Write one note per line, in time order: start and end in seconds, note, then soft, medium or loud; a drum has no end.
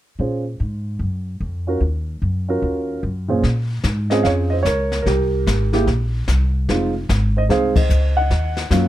0.19 0.58 A#2 medium
0.19 0.43 C#4 soft
0.19 0.43 F4 soft
0.19 0.43 G#4 soft
0.19 0.43 C5 soft
0.60 0.99 G#2 medium
0.99 1.39 F#2 medium
1.40 1.80 F2 medium
1.67 1.80 C#4 soft
1.67 1.80 F4 soft
1.67 1.80 F#4 soft
1.67 1.81 A#4 medium
1.80 2.20 D#2 medium
2.22 2.61 F#2 medium
2.49 3.00 C#4 medium
2.49 3.00 F4 soft
2.49 3.01 F#4 medium
2.49 3.01 A#4 medium
2.62 3.02 D#2 medium
3.03 3.42 F#2 medium
3.28 3.42 A#2 medium
3.28 3.42 C#4 medium
3.28 3.42 F4 medium
3.28 3.42 G#4 medium
3.28 3.42 C5 medium
3.43 3.83 A#2 medium
3.43 brush sweep soft
3.43 kick soft
3.43 snare soft
3.84 4.23 G#2 medium
3.84 kick soft
3.84 snare medium
3.84 hi-hat pedal soft
4.10 4.62 C4 medium
4.10 4.62 C#4 medium
4.10 4.63 F4 medium
4.10 4.63 G#4 medium
4.10 4.25 C5 medium
4.10 4.23 D#5 medium
4.10 snare soft
4.23 4.64 F2 medium
4.23 4.32 C#5 medium
4.23 4.29 F5 medium
4.23 brush sweep soft
4.23 kick soft
4.23 snare soft
4.50 4.58 C5 medium
4.50 4.55 D#5 medium
4.63 5.04 C#2 medium
4.63 5.01 A#4 medium
4.63 5.06 C#5 medium
4.63 kick soft
4.63 snare medium
4.63 hi-hat pedal medium
4.92 snare soft
5.02 5.45 C2 medium
5.02 5.81 A#4 medium
5.02 brush sweep soft
5.02 kick soft
5.02 snare soft
5.07 5.72 G4 medium
5.47 5.86 G#1 medium
5.47 kick soft
5.47 snare medium
5.47 hi-hat pedal medium
5.73 5.85 G#3 medium
5.73 5.86 A#3 medium
5.73 5.86 E4 medium
5.73 5.86 G4 medium
5.73 snare soft
5.87 6.26 A#1 medium
5.87 brush sweep soft
5.87 kick soft
5.87 snare soft
6.28 6.67 C2 medium
6.28 kick soft
6.28 snare medium
6.28 hi-hat pedal medium
6.69 7.07 F1 medium
6.69 6.92 G#3 medium
6.69 6.92 C4 soft
6.69 6.92 D#4 soft
6.69 6.93 F4 medium
6.69 brush sweep soft
6.69 kick soft
6.69 snare soft
7.09 7.48 G#1 medium
7.09 kick soft
7.09 snare medium
7.09 hi-hat pedal medium
7.37 7.42 C5 medium
7.37 7.43 D#5 medium
7.49 7.89 C2 medium
7.49 7.73 G#3 medium
7.49 7.73 C4 medium
7.49 7.73 D#4 medium
7.49 7.74 G#4 medium
7.49 7.74 C5 medium
7.49 7.75 F5 medium
7.49 brush sweep soft
7.49 kick soft
7.49 snare soft
7.76 8.14 C5 medium
7.76 8.16 D#5 medium
7.76 kick medium
7.76 ride medium
7.89 8.29 C#2 medium
7.89 hi-hat pedal medium
8.17 8.88 D#5 medium
8.17 8.88 F#5 medium
8.30 8.69 D#2 medium
8.30 brush sweep soft
8.30 kick soft
8.30 snare soft
8.57 snare soft
8.70 8.88 F#2 medium
8.70 8.88 F#3 medium
8.70 8.88 A#3 medium
8.70 8.88 C#4 medium
8.70 8.88 F4 medium
8.70 kick soft
8.70 snare medium
8.70 hi-hat pedal medium